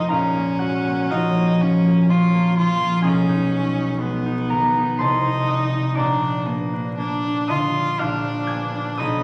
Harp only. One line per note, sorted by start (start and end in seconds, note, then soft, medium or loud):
0.00 0.15 F1 soft
0.00 1.10 F3 soft
0.00 1.09 F4 soft
0.00 0.15 A4 medium
0.00 0.15 C5 medium
0.00 0.14 A5 medium
0.00 0.14 C6 medium
0.09 3.07 A#1 soft
0.09 3.07 A#4 medium
0.09 1.09 F5 medium
0.09 3.06 A#5 medium
0.35 0.85 A#3 soft
0.59 1.03 G#3 soft
0.59 3.07 F#4 medium
0.59 1.45 F#5 medium
0.87 1.36 A#3 soft
1.10 1.59 F3 soft
1.10 3.08 F4 soft
1.10 3.08 C#5 soft
1.10 3.07 F5 medium
1.38 1.84 A#3 soft
1.61 2.58 F3 soft
1.85 2.33 A#3 soft
2.11 3.09 C#4 soft
2.34 2.79 A#3 soft
2.59 3.09 F3 soft
2.81 3.08 A#3 soft
3.02 5.04 B1 medium
3.02 5.03 G#4 medium
3.02 5.48 D#5 medium
3.02 5.03 G#5 medium
3.29 3.77 D#4 soft
3.54 3.95 C#4 soft
3.78 4.25 D#4 soft
4.02 5.04 G#3 soft
4.26 4.76 D#4 soft
4.50 5.04 D#3 soft
4.50 5.03 A#4 medium
4.50 5.33 A#5 medium
4.77 5.26 D#4 soft
4.98 6.02 C2 medium
4.98 6.02 C5 medium
4.98 6.02 A5 medium
4.98 6.01 C6 medium
5.27 5.73 D#4 soft
5.48 5.91 D4 soft
5.48 6.02 D#5 medium
5.48 6.01 D#6 medium
5.74 6.02 D#4 medium
5.95 8.00 A#1 medium
5.95 9.03 D5 medium
5.95 9.03 A#5 medium
5.95 7.99 D6 medium
6.21 6.72 D4 medium
6.47 6.90 B3 soft
6.73 7.23 D4 soft
6.99 9.03 A#3 soft
7.24 7.75 D4 soft
7.48 8.03 D3 soft
7.48 8.03 D#5 medium
7.48 8.33 D#6 medium
7.76 8.23 D4 soft
7.99 9.05 A#1 medium
7.99 9.04 F5 medium
7.99 9.04 D6 medium
7.99 9.03 F6 medium
8.24 8.73 D4 soft
8.47 8.92 B3 soft
8.47 9.03 G#5 medium
8.47 9.02 G#6 medium
8.75 9.03 D4 soft
8.97 9.23 B1 medium
8.97 9.23 D#5 medium
8.97 9.23 B5 medium
8.97 9.23 D#6 medium